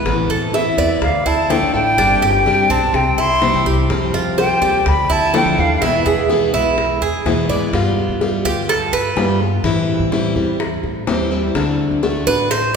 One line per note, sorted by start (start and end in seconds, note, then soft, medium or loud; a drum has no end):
0.00 0.29 B4 medium
0.05 0.29 A1 loud
0.05 0.52 E3 medium
0.05 0.53 B3 medium
0.05 0.53 C4 medium
0.05 0.54 E4 medium
0.05 high bongo medium
0.30 0.53 A1 medium
0.30 0.53 A4 medium
0.30 high bongo soft
0.54 0.77 E3 medium
0.54 0.77 B3 medium
0.54 0.77 C4 medium
0.54 0.76 E4 medium
0.54 0.77 E5 medium
0.54 0.99 E5 medium
0.54 high bongo medium
0.78 1.01 E2 loud
0.78 1.01 B3 soft
0.78 1.02 C4 soft
0.78 1.01 E4 soft
0.78 1.25 D5 medium
1.02 1.25 D2 medium
1.02 1.29 F5 medium
1.02 muted steel-string acoustic guitar stroke medium
1.02 high bongo medium
1.26 1.60 D2 medium
1.26 1.49 E4 medium
1.26 1.53 A5 medium
1.26 high bongo soft
1.50 1.73 D3 medium
1.50 1.73 F3 medium
1.50 1.73 A3 medium
1.50 1.73 D4 medium
1.50 1.73 E4 medium
1.50 1.97 A4 medium
1.50 1.74 G5 medium
1.50 high bongo soft
1.50 low bongo medium
1.62 1.73 D3 medium
1.73 1.97 A1 loud
1.73 1.98 A3 soft
1.73 1.97 D4 soft
1.73 1.97 E4 soft
1.73 2.73 G5 loud
1.73 high bongo soft
1.97 2.21 G1 loud
1.97 2.45 C3 medium
1.97 2.45 G3 medium
1.97 2.46 C4 medium
1.97 2.21 D4 medium
1.97 2.46 D4 medium
1.97 2.46 G4 medium
1.97 high bongo medium
2.22 2.45 G1 medium
2.22 2.69 G4 medium
2.22 high bongo soft
2.46 2.69 C3 medium
2.46 2.69 G3 medium
2.46 2.70 C4 medium
2.46 2.69 D4 medium
2.46 2.69 G4 medium
2.46 high bongo medium
2.70 2.92 B1 medium
2.70 3.17 C4 medium
2.70 2.93 C4 soft
2.70 2.93 D4 soft
2.70 2.93 G4 soft
2.70 2.97 A5 medium
2.93 3.16 C2 loud
2.93 3.21 G5 medium
2.93 muted steel-string acoustic guitar stroke medium
2.93 high bongo medium
3.17 3.52 C2 medium
3.17 3.65 E4 medium
3.17 3.67 C6 loud
3.17 high bongo soft
3.42 3.65 C3 medium
3.42 3.65 E3 medium
3.42 3.65 G3 medium
3.42 3.66 C4 medium
3.42 3.65 E4 medium
3.42 high bongo soft
3.42 low bongo medium
3.53 3.65 C3 medium
3.65 3.88 C2 loud
3.65 3.89 G3 soft
3.65 3.90 C4 soft
3.65 3.89 E4 soft
3.65 4.13 G4 medium
3.65 high bongo soft
3.89 4.13 F2 medium
3.89 4.37 F3 medium
3.89 4.37 G3 medium
3.89 4.38 C4 medium
3.89 4.38 G4 medium
3.89 high bongo medium
4.13 4.36 F2 medium
4.13 4.37 F4 medium
4.13 high bongo soft
4.38 4.61 F3 medium
4.38 4.61 G3 medium
4.38 4.62 C4 medium
4.38 4.61 G4 medium
4.38 4.61 C5 medium
4.38 4.90 G5 medium
4.38 high bongo medium
4.62 4.85 D#2 loud
4.62 4.86 G3 soft
4.62 4.86 C4 soft
4.62 4.85 G4 soft
4.62 5.08 D5 medium
4.86 5.09 D2 loud
4.86 5.14 B5 medium
4.86 muted steel-string acoustic guitar stroke medium
4.86 high bongo medium
5.10 5.44 D2 medium
5.10 5.33 E4 medium
5.10 5.35 A5 loud
5.10 high bongo soft
5.34 5.57 D3 medium
5.34 5.57 F3 medium
5.34 5.57 A3 medium
5.34 5.57 D4 medium
5.34 5.57 E4 medium
5.34 5.80 A4 medium
5.34 5.61 G5 medium
5.34 high bongo soft
5.34 low bongo medium
5.45 5.57 D3 medium
5.57 5.80 D#2 loud
5.57 5.82 A3 soft
5.57 5.81 D4 soft
5.57 5.81 E4 soft
5.57 5.76 F5 medium
5.57 high bongo soft
5.76 5.85 F5 medium
5.81 6.04 E2 loud
5.81 6.28 B2 medium
5.81 6.28 E3 medium
5.81 6.29 G#3 medium
5.81 6.29 B3 medium
5.81 6.05 E4 medium
5.81 6.30 E4 medium
5.81 6.31 E5 medium
5.81 high bongo medium
6.06 6.28 E2 medium
6.06 6.52 G#4 medium
6.06 high bongo soft
6.29 6.52 B2 medium
6.29 6.53 E3 medium
6.29 6.53 G#3 medium
6.29 6.53 B3 medium
6.29 6.52 E4 medium
6.29 high bongo medium
6.53 6.99 B1 medium
6.53 6.77 G#3 soft
6.53 6.77 B3 soft
6.53 6.77 E4 soft
6.53 7.00 E4 medium
6.77 muted steel-string acoustic guitar stroke soft
6.77 high bongo medium
7.01 7.24 E2 medium
7.01 7.48 G#4 medium
7.01 high bongo soft
7.25 7.47 E2 medium
7.25 7.48 B2 medium
7.25 7.49 E3 medium
7.25 7.49 G#3 medium
7.25 7.49 B3 medium
7.25 7.48 E4 medium
7.25 high bongo soft
7.25 low bongo medium
7.49 7.71 G#2 medium
7.49 7.73 G#3 soft
7.49 7.73 B3 soft
7.49 7.72 E4 soft
7.49 7.73 D5 medium
7.49 high bongo soft
7.73 8.07 G2 medium
7.73 8.20 G3 medium
7.73 8.21 B3 medium
7.73 8.21 F4 medium
7.73 high bongo medium
8.09 8.43 G2 medium
8.21 8.44 G3 medium
8.21 8.45 B3 medium
8.21 8.44 F4 medium
8.21 high bongo medium
8.44 8.90 D2 medium
8.44 8.68 B3 soft
8.44 8.68 F4 soft
8.44 8.68 G4 medium
8.44 high bongo soft
8.69 8.92 A4 medium
8.69 muted steel-string acoustic guitar stroke medium
8.69 high bongo medium
8.93 9.15 G2 medium
8.93 9.37 B4 medium
8.93 high bongo soft
9.16 9.62 G2 loud
9.16 9.40 G3 medium
9.16 9.40 B3 medium
9.16 9.39 F4 medium
9.16 high bongo soft
9.16 low bongo medium
9.40 9.64 B3 soft
9.40 9.63 F4 soft
9.40 high bongo soft
9.64 9.98 A2 medium
9.64 10.11 E3 medium
9.64 10.11 G3 medium
9.64 10.12 C4 medium
9.64 10.12 E4 medium
9.64 high bongo medium
10.00 10.34 A2 medium
10.12 10.35 E3 medium
10.12 10.35 G3 medium
10.12 10.36 C4 medium
10.12 10.35 E4 medium
10.12 high bongo medium
10.35 10.81 E2 medium
10.35 10.59 G3 soft
10.35 10.59 C4 soft
10.35 10.59 E4 soft
10.35 high bongo soft
10.60 muted steel-string acoustic guitar stroke medium
10.60 high bongo medium
10.83 11.06 A2 medium
10.83 high bongo soft
11.07 11.53 D#2 medium
11.07 11.30 E3 medium
11.07 11.31 G3 medium
11.07 11.30 C4 medium
11.07 11.30 E4 medium
11.07 high bongo soft
11.07 low bongo medium
11.31 11.55 G3 soft
11.31 11.54 C4 soft
11.31 11.54 E4 medium
11.31 high bongo soft
11.55 11.89 D2 medium
11.55 12.01 D3 medium
11.55 12.02 A3 medium
11.55 12.02 D4 medium
11.55 12.03 F#4 medium
11.55 high bongo medium
11.91 12.25 D2 medium
12.03 12.26 D3 medium
12.03 12.26 A3 medium
12.03 12.26 D4 medium
12.03 12.26 F#4 medium
12.03 high bongo medium
12.27 12.72 A1 medium
12.27 12.50 A3 soft
12.27 12.50 D4 soft
12.27 12.50 F#4 medium
12.27 12.50 B4 loud
12.27 high bongo soft
12.51 12.74 C5 medium
12.51 muted steel-string acoustic guitar stroke medium
12.51 high bongo medium